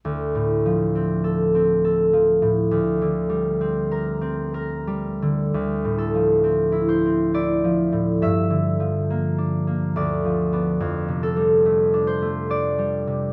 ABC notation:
X:1
M:3/4
L:1/8
Q:1/4=68
K:Dm
V:1 name="Harp"
z6 | z6 | z A2 c d2 | e4 d2- |
d A2 c d2 |]
V:2 name="Harp" clef=bass
(3D,, A,, F, (3C A C (3A F, A,, | (3D,, D, G, (3C B C (3B G, D, | (3D,, A,, F, (3C E C (3E F, A,, | (3G,, D, F, (3B, D B, (3D,, F, [=B,D] |
(3F,, C, G, (3A, D A, (3D G, C, |]